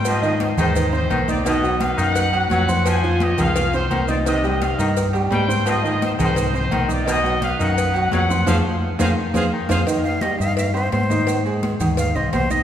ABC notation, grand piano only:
X:1
M:4/4
L:1/8
Q:1/4=171
K:Cm
V:1 name="Grand piano"
[Ccc'] [E,Ee]2 [A,Aa] [Eee'] [Ccc']2 [Eee'] | [^D,^D^d] [^F,^F^f]2 [Dd^d']2 [F,Ff]2 [Ccc']- | [Ccc'] [F,Ff]2 [A,Aa] [Fff'] [Ccc']2 [Eee'] | [E,Ee] [G,Gg]2 [Eee']2 [G,Gg]2 [Ccc']- |
[Ccc'] [E,Ee]2 [A,Aa] [Eee'] [Ccc']2 [Eee'] | [^D,^D^d] [^F,^F^f]2 [Dd^d']2 [F,Ff]2 [Ccc'] | [Acf] z2 [Acf] z [Acf] z [Acf] | [E,Ee]2 [G,Gg] [Eee']2 [Ccc']2 [E,Ee]- |
[E,Ee] [A,Aa]2 [Eee']2 [Ccc']2 [Eee'] |]